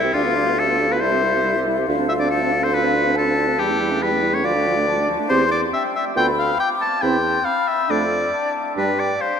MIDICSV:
0, 0, Header, 1, 6, 480
1, 0, Start_track
1, 0, Tempo, 431034
1, 157, Time_signature, 4, 2, 24, 8
1, 10466, End_track
2, 0, Start_track
2, 0, Title_t, "Flute"
2, 0, Program_c, 0, 73
2, 0, Note_on_c, 0, 76, 71
2, 135, Note_off_c, 0, 76, 0
2, 166, Note_on_c, 0, 77, 71
2, 1110, Note_off_c, 0, 77, 0
2, 1131, Note_on_c, 0, 76, 69
2, 2084, Note_on_c, 0, 77, 70
2, 2100, Note_off_c, 0, 76, 0
2, 3515, Note_on_c, 0, 81, 69
2, 3532, Note_off_c, 0, 77, 0
2, 4206, Note_off_c, 0, 81, 0
2, 4472, Note_on_c, 0, 79, 62
2, 4946, Note_on_c, 0, 77, 62
2, 4963, Note_off_c, 0, 79, 0
2, 5421, Note_off_c, 0, 77, 0
2, 5427, Note_on_c, 0, 81, 63
2, 5904, Note_on_c, 0, 84, 72
2, 5921, Note_off_c, 0, 81, 0
2, 6381, Note_off_c, 0, 84, 0
2, 6394, Note_on_c, 0, 79, 56
2, 6857, Note_off_c, 0, 79, 0
2, 6872, Note_on_c, 0, 83, 64
2, 7350, Note_on_c, 0, 86, 67
2, 7367, Note_off_c, 0, 83, 0
2, 7819, Note_off_c, 0, 86, 0
2, 7826, Note_on_c, 0, 84, 68
2, 8301, Note_on_c, 0, 83, 64
2, 8318, Note_off_c, 0, 84, 0
2, 8957, Note_off_c, 0, 83, 0
2, 9273, Note_on_c, 0, 81, 59
2, 9722, Note_off_c, 0, 81, 0
2, 9770, Note_on_c, 0, 79, 57
2, 10230, Note_off_c, 0, 79, 0
2, 10237, Note_on_c, 0, 77, 47
2, 10466, Note_off_c, 0, 77, 0
2, 10466, End_track
3, 0, Start_track
3, 0, Title_t, "Oboe"
3, 0, Program_c, 1, 68
3, 0, Note_on_c, 1, 64, 77
3, 150, Note_on_c, 1, 65, 76
3, 167, Note_off_c, 1, 64, 0
3, 660, Note_on_c, 1, 69, 83
3, 677, Note_off_c, 1, 65, 0
3, 1026, Note_on_c, 1, 71, 65
3, 1043, Note_off_c, 1, 69, 0
3, 1122, Note_on_c, 1, 72, 86
3, 1139, Note_off_c, 1, 71, 0
3, 1843, Note_off_c, 1, 72, 0
3, 2326, Note_on_c, 1, 76, 81
3, 2379, Note_off_c, 1, 76, 0
3, 2449, Note_on_c, 1, 74, 68
3, 2559, Note_off_c, 1, 74, 0
3, 2566, Note_on_c, 1, 69, 76
3, 2939, Note_on_c, 1, 72, 75
3, 2956, Note_off_c, 1, 69, 0
3, 3059, Note_on_c, 1, 71, 87
3, 3076, Note_off_c, 1, 72, 0
3, 3524, Note_off_c, 1, 71, 0
3, 3539, Note_on_c, 1, 69, 77
3, 3997, Note_on_c, 1, 67, 72
3, 4014, Note_off_c, 1, 69, 0
3, 4479, Note_on_c, 1, 71, 82
3, 4496, Note_off_c, 1, 67, 0
3, 4837, Note_on_c, 1, 73, 67
3, 4854, Note_off_c, 1, 71, 0
3, 4954, Note_on_c, 1, 74, 88
3, 4970, Note_off_c, 1, 73, 0
3, 5670, Note_off_c, 1, 74, 0
3, 5894, Note_on_c, 1, 72, 81
3, 6121, Note_off_c, 1, 72, 0
3, 6139, Note_on_c, 1, 74, 66
3, 6248, Note_off_c, 1, 74, 0
3, 6384, Note_on_c, 1, 76, 71
3, 6491, Note_off_c, 1, 76, 0
3, 6636, Note_on_c, 1, 76, 72
3, 6741, Note_off_c, 1, 76, 0
3, 6871, Note_on_c, 1, 79, 89
3, 6976, Note_off_c, 1, 79, 0
3, 7114, Note_on_c, 1, 77, 73
3, 7342, Note_off_c, 1, 77, 0
3, 7350, Note_on_c, 1, 79, 77
3, 7456, Note_off_c, 1, 79, 0
3, 7586, Note_on_c, 1, 81, 76
3, 7814, Note_on_c, 1, 79, 82
3, 7831, Note_off_c, 1, 81, 0
3, 8295, Note_on_c, 1, 77, 73
3, 8311, Note_off_c, 1, 79, 0
3, 8551, Note_on_c, 1, 76, 71
3, 8567, Note_off_c, 1, 77, 0
3, 8800, Note_on_c, 1, 74, 68
3, 8817, Note_off_c, 1, 76, 0
3, 9517, Note_off_c, 1, 74, 0
3, 9774, Note_on_c, 1, 71, 70
3, 10015, Note_on_c, 1, 74, 68
3, 10031, Note_off_c, 1, 71, 0
3, 10254, Note_on_c, 1, 72, 67
3, 10270, Note_off_c, 1, 74, 0
3, 10466, Note_off_c, 1, 72, 0
3, 10466, End_track
4, 0, Start_track
4, 0, Title_t, "Clarinet"
4, 0, Program_c, 2, 71
4, 54, Note_on_c, 2, 67, 51
4, 157, Note_off_c, 2, 67, 0
4, 164, Note_on_c, 2, 67, 59
4, 288, Note_on_c, 2, 65, 48
4, 305, Note_off_c, 2, 67, 0
4, 413, Note_on_c, 2, 67, 53
4, 429, Note_off_c, 2, 65, 0
4, 538, Note_on_c, 2, 65, 51
4, 555, Note_off_c, 2, 67, 0
4, 651, Note_off_c, 2, 65, 0
4, 663, Note_on_c, 2, 67, 55
4, 786, Note_on_c, 2, 65, 45
4, 803, Note_off_c, 2, 67, 0
4, 901, Note_on_c, 2, 67, 53
4, 918, Note_off_c, 2, 65, 0
4, 1017, Note_on_c, 2, 65, 44
4, 1034, Note_off_c, 2, 67, 0
4, 1125, Note_off_c, 2, 65, 0
4, 1131, Note_on_c, 2, 64, 53
4, 1256, Note_on_c, 2, 67, 50
4, 1273, Note_off_c, 2, 64, 0
4, 1377, Note_on_c, 2, 64, 50
4, 1394, Note_off_c, 2, 67, 0
4, 1500, Note_on_c, 2, 67, 43
4, 1517, Note_off_c, 2, 64, 0
4, 1603, Note_off_c, 2, 67, 0
4, 1609, Note_on_c, 2, 64, 53
4, 1746, Note_on_c, 2, 67, 47
4, 1763, Note_off_c, 2, 64, 0
4, 1865, Note_on_c, 2, 64, 48
4, 1882, Note_off_c, 2, 67, 0
4, 1985, Note_on_c, 2, 67, 51
4, 2002, Note_off_c, 2, 64, 0
4, 2090, Note_off_c, 2, 67, 0
4, 2096, Note_on_c, 2, 65, 56
4, 2208, Note_on_c, 2, 62, 50
4, 2225, Note_off_c, 2, 65, 0
4, 2338, Note_on_c, 2, 65, 52
4, 2354, Note_off_c, 2, 62, 0
4, 2452, Note_on_c, 2, 62, 51
4, 2469, Note_off_c, 2, 65, 0
4, 2568, Note_off_c, 2, 62, 0
4, 2583, Note_on_c, 2, 65, 52
4, 2697, Note_on_c, 2, 62, 48
4, 2713, Note_off_c, 2, 65, 0
4, 2821, Note_on_c, 2, 65, 49
4, 2838, Note_off_c, 2, 62, 0
4, 2929, Note_on_c, 2, 62, 44
4, 2945, Note_off_c, 2, 65, 0
4, 3030, Note_off_c, 2, 62, 0
4, 3037, Note_on_c, 2, 65, 56
4, 3162, Note_on_c, 2, 62, 45
4, 3179, Note_off_c, 2, 65, 0
4, 3287, Note_on_c, 2, 65, 52
4, 3304, Note_off_c, 2, 62, 0
4, 3400, Note_on_c, 2, 62, 44
4, 3417, Note_off_c, 2, 65, 0
4, 3517, Note_off_c, 2, 62, 0
4, 3532, Note_on_c, 2, 65, 47
4, 3638, Note_on_c, 2, 62, 47
4, 3654, Note_off_c, 2, 65, 0
4, 3758, Note_on_c, 2, 65, 47
4, 3774, Note_off_c, 2, 62, 0
4, 3865, Note_on_c, 2, 62, 50
4, 3882, Note_off_c, 2, 65, 0
4, 3989, Note_off_c, 2, 62, 0
4, 4004, Note_on_c, 2, 64, 59
4, 4121, Note_on_c, 2, 61, 46
4, 4138, Note_off_c, 2, 64, 0
4, 4231, Note_on_c, 2, 64, 52
4, 4248, Note_off_c, 2, 61, 0
4, 4352, Note_on_c, 2, 61, 51
4, 4369, Note_off_c, 2, 64, 0
4, 4458, Note_off_c, 2, 61, 0
4, 4465, Note_on_c, 2, 64, 52
4, 4582, Note_on_c, 2, 61, 50
4, 4599, Note_off_c, 2, 64, 0
4, 4706, Note_on_c, 2, 64, 50
4, 4723, Note_off_c, 2, 61, 0
4, 4827, Note_on_c, 2, 61, 43
4, 4844, Note_off_c, 2, 64, 0
4, 4940, Note_off_c, 2, 61, 0
4, 4946, Note_on_c, 2, 65, 54
4, 5070, Note_on_c, 2, 62, 46
4, 5086, Note_off_c, 2, 65, 0
4, 5203, Note_on_c, 2, 65, 51
4, 5219, Note_off_c, 2, 62, 0
4, 5319, Note_on_c, 2, 62, 47
4, 5336, Note_off_c, 2, 65, 0
4, 5427, Note_off_c, 2, 62, 0
4, 5434, Note_on_c, 2, 65, 49
4, 5565, Note_on_c, 2, 62, 45
4, 5582, Note_off_c, 2, 65, 0
4, 5677, Note_on_c, 2, 65, 45
4, 5693, Note_off_c, 2, 62, 0
4, 5783, Note_on_c, 2, 62, 51
4, 5800, Note_off_c, 2, 65, 0
4, 5898, Note_off_c, 2, 62, 0
4, 5905, Note_on_c, 2, 67, 63
4, 6071, Note_off_c, 2, 67, 0
4, 6856, Note_on_c, 2, 65, 60
4, 7024, Note_off_c, 2, 65, 0
4, 7822, Note_on_c, 2, 64, 59
4, 7988, Note_off_c, 2, 64, 0
4, 8786, Note_on_c, 2, 62, 56
4, 8953, Note_off_c, 2, 62, 0
4, 9753, Note_on_c, 2, 62, 57
4, 9923, Note_off_c, 2, 62, 0
4, 10466, End_track
5, 0, Start_track
5, 0, Title_t, "French horn"
5, 0, Program_c, 3, 60
5, 44, Note_on_c, 3, 60, 51
5, 155, Note_off_c, 3, 60, 0
5, 162, Note_on_c, 3, 62, 64
5, 271, Note_on_c, 3, 59, 50
5, 288, Note_off_c, 3, 62, 0
5, 393, Note_on_c, 3, 62, 49
5, 409, Note_off_c, 3, 59, 0
5, 508, Note_on_c, 3, 59, 45
5, 525, Note_off_c, 3, 62, 0
5, 630, Note_off_c, 3, 59, 0
5, 637, Note_on_c, 3, 62, 48
5, 751, Note_on_c, 3, 59, 50
5, 768, Note_off_c, 3, 62, 0
5, 869, Note_on_c, 3, 62, 47
5, 885, Note_off_c, 3, 59, 0
5, 995, Note_on_c, 3, 59, 51
5, 1012, Note_off_c, 3, 62, 0
5, 1113, Note_off_c, 3, 59, 0
5, 1119, Note_on_c, 3, 55, 55
5, 1256, Note_on_c, 3, 60, 50
5, 1273, Note_off_c, 3, 55, 0
5, 1375, Note_on_c, 3, 55, 51
5, 1391, Note_off_c, 3, 60, 0
5, 1496, Note_on_c, 3, 60, 48
5, 1513, Note_off_c, 3, 55, 0
5, 1601, Note_off_c, 3, 60, 0
5, 1607, Note_on_c, 3, 55, 48
5, 1729, Note_on_c, 3, 60, 47
5, 1746, Note_off_c, 3, 55, 0
5, 1851, Note_on_c, 3, 55, 46
5, 1868, Note_off_c, 3, 60, 0
5, 1974, Note_on_c, 3, 60, 50
5, 1990, Note_off_c, 3, 55, 0
5, 2088, Note_off_c, 3, 60, 0
5, 2100, Note_on_c, 3, 62, 55
5, 2201, Note_on_c, 3, 60, 45
5, 2217, Note_off_c, 3, 62, 0
5, 2327, Note_on_c, 3, 62, 49
5, 2343, Note_off_c, 3, 60, 0
5, 2443, Note_on_c, 3, 60, 46
5, 2459, Note_off_c, 3, 62, 0
5, 2559, Note_off_c, 3, 60, 0
5, 2566, Note_on_c, 3, 62, 47
5, 2688, Note_on_c, 3, 60, 48
5, 2705, Note_off_c, 3, 62, 0
5, 2809, Note_on_c, 3, 62, 51
5, 2825, Note_off_c, 3, 60, 0
5, 2920, Note_on_c, 3, 60, 46
5, 2937, Note_off_c, 3, 62, 0
5, 3032, Note_off_c, 3, 60, 0
5, 3039, Note_on_c, 3, 62, 51
5, 3151, Note_on_c, 3, 60, 45
5, 3168, Note_off_c, 3, 62, 0
5, 3270, Note_on_c, 3, 62, 48
5, 3286, Note_off_c, 3, 60, 0
5, 3387, Note_on_c, 3, 60, 49
5, 3404, Note_off_c, 3, 62, 0
5, 3499, Note_off_c, 3, 60, 0
5, 3506, Note_on_c, 3, 62, 50
5, 3620, Note_on_c, 3, 60, 47
5, 3636, Note_off_c, 3, 62, 0
5, 3743, Note_on_c, 3, 62, 51
5, 3760, Note_off_c, 3, 60, 0
5, 3870, Note_on_c, 3, 60, 45
5, 3887, Note_off_c, 3, 62, 0
5, 3986, Note_off_c, 3, 60, 0
5, 3993, Note_on_c, 3, 55, 55
5, 4109, Note_on_c, 3, 57, 50
5, 4126, Note_off_c, 3, 55, 0
5, 4236, Note_on_c, 3, 55, 52
5, 4252, Note_off_c, 3, 57, 0
5, 4352, Note_on_c, 3, 57, 43
5, 4369, Note_off_c, 3, 55, 0
5, 4470, Note_off_c, 3, 57, 0
5, 4475, Note_on_c, 3, 55, 51
5, 4588, Note_on_c, 3, 57, 48
5, 4605, Note_off_c, 3, 55, 0
5, 4685, Note_on_c, 3, 55, 49
5, 4702, Note_off_c, 3, 57, 0
5, 4824, Note_on_c, 3, 57, 46
5, 4841, Note_off_c, 3, 55, 0
5, 4942, Note_off_c, 3, 57, 0
5, 4949, Note_on_c, 3, 53, 50
5, 5064, Note_on_c, 3, 57, 48
5, 5080, Note_off_c, 3, 53, 0
5, 5192, Note_on_c, 3, 53, 52
5, 5209, Note_off_c, 3, 57, 0
5, 5311, Note_on_c, 3, 57, 47
5, 5328, Note_off_c, 3, 53, 0
5, 5425, Note_off_c, 3, 57, 0
5, 5431, Note_on_c, 3, 53, 47
5, 5547, Note_on_c, 3, 57, 43
5, 5563, Note_off_c, 3, 53, 0
5, 5654, Note_on_c, 3, 53, 48
5, 5671, Note_off_c, 3, 57, 0
5, 5771, Note_on_c, 3, 57, 44
5, 5788, Note_off_c, 3, 53, 0
5, 5891, Note_off_c, 3, 57, 0
5, 5897, Note_on_c, 3, 60, 67
5, 6066, Note_off_c, 3, 60, 0
5, 6857, Note_on_c, 3, 59, 55
5, 7025, Note_off_c, 3, 59, 0
5, 7828, Note_on_c, 3, 60, 60
5, 7992, Note_off_c, 3, 60, 0
5, 8792, Note_on_c, 3, 57, 54
5, 8957, Note_off_c, 3, 57, 0
5, 9772, Note_on_c, 3, 55, 56
5, 9935, Note_off_c, 3, 55, 0
5, 10466, End_track
6, 0, Start_track
6, 0, Title_t, "Bassoon"
6, 0, Program_c, 4, 70
6, 0, Note_on_c, 4, 36, 72
6, 115, Note_off_c, 4, 36, 0
6, 151, Note_on_c, 4, 38, 62
6, 1126, Note_on_c, 4, 36, 61
6, 1142, Note_off_c, 4, 38, 0
6, 2084, Note_off_c, 4, 36, 0
6, 2094, Note_on_c, 4, 38, 65
6, 3989, Note_on_c, 4, 40, 64
6, 4006, Note_off_c, 4, 38, 0
6, 4946, Note_on_c, 4, 38, 60
6, 4963, Note_off_c, 4, 40, 0
6, 5714, Note_off_c, 4, 38, 0
6, 5903, Note_on_c, 4, 40, 65
6, 6301, Note_off_c, 4, 40, 0
6, 6864, Note_on_c, 4, 38, 66
6, 7261, Note_off_c, 4, 38, 0
6, 7820, Note_on_c, 4, 40, 59
6, 8220, Note_off_c, 4, 40, 0
6, 8797, Note_on_c, 4, 41, 58
6, 9192, Note_off_c, 4, 41, 0
6, 9765, Note_on_c, 4, 43, 60
6, 10164, Note_off_c, 4, 43, 0
6, 10466, End_track
0, 0, End_of_file